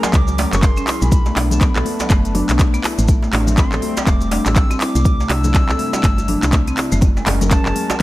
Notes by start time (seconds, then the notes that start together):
Already playing: F#3 C#4 G#4 A#4
0.03 F#3 C6, closed hi-hat, djembe slap, djembe tone, maracas
0.13 C#2 G#3 D6, kick, clap, closed hi-hat, maracas
0.28 closed hi-hat, djembe tone, maracas
0.38 C#4, open hi-hat, djembe slap, high conga
0.53 F#1 C#4 C#6, clap, closed hi-hat, maracas
0.63 C6, kick, clap, closed hi-hat, djembe tone, maracas
0.77 C#4, closed hi-hat, maracas
0.87 E4, clap, open hi-hat, djembe tone
1.02 B1 G#3 B5, closed hi-hat, maracas
1.12 A3 B3 D4, kick, closed hi-hat, djembe tone, maracas
1.26 A3, djembe slap, maracas
1.37 B1 D4, clap, open hi-hat, djembe slap
1.51 A5, closed hi-hat, high conga, djembe tone, low conga, maracas
1.61 B3 B5, kick, clap, closed hi-hat, low conga, maracas
1.75 B1 A4, clap, djembe tone, maracas
1.85 open hi-hat, high conga
2.00 F#3, closed hi-hat, djembe slap, djembe tone, maracas
2.10 F#1 A3, kick, clap, closed hi-hat, maracas
2.25 closed hi-hat, maracas
2.35 D4, open hi-hat, high conga, djembe tone, low conga
2.48 B1 B3, clap, closed hi-hat, maracas
2.59 kick, clap, closed hi-hat, high conga, djembe tone, maracas
2.74 B3, closed hi-hat, maracas
2.84 E4, clap, open hi-hat, djembe tone
2.98 A1 A3, closed hi-hat, maracas
3.08 G3 A3 C4, kick, closed hi-hat, maracas
3.23 A3, djembe slap, maracas
3.33 A1 D4, clap, open hi-hat, djembe slap, djembe tone
3.47 closed hi-hat, high conga, low conga, maracas
3.58 C4 C6, kick, clap, closed hi-hat, djembe tone, low conga, maracas
3.72 A1 A4, clap, maracas
3.82 open hi-hat, djembe tone, high conga
3.97 G3, closed hi-hat, djembe slap, maracas
4.07 E1 A3 D6, kick, clap, closed hi-hat, maracas
4.21 closed hi-hat, djembe tone, maracas
4.31 D4, open hi-hat, djembe slap, high conga
4.46 A1 C4 E6, clap, closed hi-hat, djembe tone, maracas
4.56 kick, clap, closed hi-hat, maracas
4.70 C4, closed hi-hat, djembe tone, maracas
4.80 E4 D6, clap, open hi-hat
4.95 C2 A3, closed hi-hat, maracas
5.05 C3 D4 E4, kick, closed hi-hat, djembe tone, maracas
5.20 A3, djembe slap, maracas
5.29 C2 D4 E6, clap, open hi-hat, djembe slap, djembe tone
5.44 closed hi-hat, high conga, low conga, maracas
5.54 C4, kick, clap, closed hi-hat, djembe tone, low conga, maracas
5.69 C2 A4, clap, maracas
5.79 open hi-hat, high conga
5.93 G3, closed hi-hat, djembe slap, djembe tone, maracas
6.04 G1 A3, kick, clap, closed hi-hat, maracas
6.18 closed hi-hat, djembe tone, maracas
6.28 D4, open hi-hat, high conga, low conga
6.42 C2 C4, clap, closed hi-hat, djembe tone, maracas
6.52 kick, clap, closed hi-hat, high conga, maracas
6.67 C4, closed hi-hat, maracas
6.77 E4, clap, open hi-hat, djembe tone
6.92 F#1 A3, closed hi-hat, maracas
7.01 F#3 G#3 C#4 A#4, kick, closed hi-hat, djembe tone, maracas
7.17 G#3, djembe slap, maracas
7.26 F#1 C#4, clap, open hi-hat, djembe slap, djembe tone
7.41 closed hi-hat, high conga, low conga, maracas
7.51 C#4 A5, kick, clap, closed hi-hat, low conga, maracas
7.66 F#1 G#4, clap, djembe tone, maracas
7.76 open hi-hat, high conga
7.90 F#3, closed hi-hat, djembe slap, djembe tone, maracas